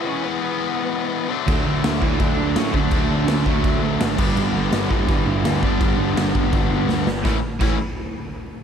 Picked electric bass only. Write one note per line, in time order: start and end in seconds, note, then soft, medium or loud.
1.48 1.65 D2 loud
1.66 1.84 D2 loud
1.84 2.01 D2 medium
2.02 2.19 D2 medium
2.20 2.37 D2 loud
2.38 2.55 D2 medium
2.56 2.73 A2 medium
2.74 2.91 D2 medium
2.92 3.09 D2 loud
3.10 3.27 D2 loud
3.28 3.45 D2 loud
3.46 3.63 D2 loud
3.64 3.81 D2 loud
3.82 4.00 D2 medium
4.01 4.18 G#1 medium
4.19 4.36 G1 medium
4.37 4.54 G1 loud
4.55 4.71 G1 medium
4.72 4.90 G1 loud
4.91 5.08 G1 medium
5.09 5.25 G1 loud
5.26 5.44 G1 loud
5.44 5.62 D2 medium
5.63 5.80 G1 medium
5.81 5.98 G1 loud
5.99 6.16 G1 medium
6.16 6.34 G1 loud
6.35 6.52 G1 loud
6.53 6.70 G1 loud
6.71 6.88 G1 medium
6.89 7.07 D2 medium
7.07 7.25 G1 medium
7.25 7.35 A1 medium
7.61 7.78 A1 loud